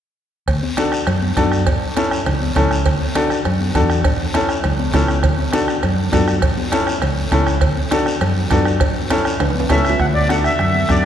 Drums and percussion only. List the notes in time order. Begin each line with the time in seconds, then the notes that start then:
0.48 bombo low, bombo rim, cowbell, high conga, long guiro
0.63 high conga
0.77 bombo rim, cowbell, high conga, short guiro
0.92 bombo rim, short guiro
1.07 bombo rim, cowbell, high conga, low conga, long guiro
1.22 high conga
1.37 bombo low, bombo rim, cowbell, high conga, short guiro
1.52 bombo rim, short guiro
1.67 bombo low, bombo rim, cowbell, high conga, long guiro
1.97 bombo rim, cowbell, high conga, short guiro
2.11 bombo rim, short guiro
2.26 bombo rim, cowbell, high conga, low conga, long guiro
2.42 high conga
2.56 bombo low, bombo rim, cowbell, high conga, low conga, short guiro
2.71 bombo rim, short guiro
2.86 bombo low, bombo rim, cowbell, high conga, long guiro
3.00 high conga
3.15 bombo rim, cowbell, high conga, short guiro
3.30 bombo rim, short guiro
3.45 bombo rim, cowbell, high conga, low conga, long guiro
3.61 high conga
3.75 bombo low, bombo rim, cowbell, high conga, short guiro
3.90 bombo rim, short guiro
4.04 bombo low, bombo rim, cowbell, high conga, low conga, long guiro
4.34 bombo rim, cowbell, high conga, short guiro
4.49 bombo rim, short guiro
4.64 bombo rim, cowbell, high conga, low conga, long guiro
4.79 high conga
4.94 bombo low, bombo rim, cowbell, high conga, low timbale, short guiro
5.08 bombo rim, short guiro
5.23 bombo low, bombo rim, cowbell, high conga, long guiro
5.39 high conga
5.53 bombo rim, cowbell, high conga, short guiro
5.68 bombo rim, short guiro
5.83 bombo rim, cowbell, high conga, low conga, long guiro
6.13 bombo low, bombo rim, cowbell, high conga, low timbale, short guiro
6.28 bombo rim, short guiro
6.42 bombo low, bombo rim, cowbell, high conga, low conga, long guiro
6.58 high conga
6.72 bombo rim, cowbell, high conga, short guiro
6.87 bombo rim, short guiro
7.02 bombo rim, cowbell, high conga, low conga, long guiro
7.32 bombo low, bombo rim, cowbell, high conga, short guiro
7.47 bombo rim, short guiro
7.61 bombo low, bombo rim, cowbell, high conga, long guiro
7.77 high conga
7.91 bombo rim, cowbell, high conga, short guiro
8.06 bombo rim, short guiro
8.21 bombo rim, cowbell, high conga, low conga, long guiro
8.50 bombo low, bombo rim, cowbell, high conga, low timbale, short guiro
8.65 bombo rim, short guiro
8.80 bombo low, bombo rim, cowbell, high conga, low conga, long guiro
9.10 bombo rim, cowbell, high conga, short guiro
9.25 bombo rim, short guiro
9.40 bombo rim, cowbell, high conga, low conga, high timbale, long guiro
9.50 high timbale
9.55 high conga
9.60 high timbale
9.70 bombo low, bombo rim, cowbell, high conga, low timbale, short guiro
9.85 bombo rim, short guiro
9.89 low timbale
10.00 bombo low, bombo rim, high conga, long guiro
10.29 bombo rim, high conga, short guiro
10.44 bombo rim, short guiro
10.59 bombo rim, high conga, low conga, long guiro
10.75 high conga
10.89 bombo low, bombo rim, high conga, short guiro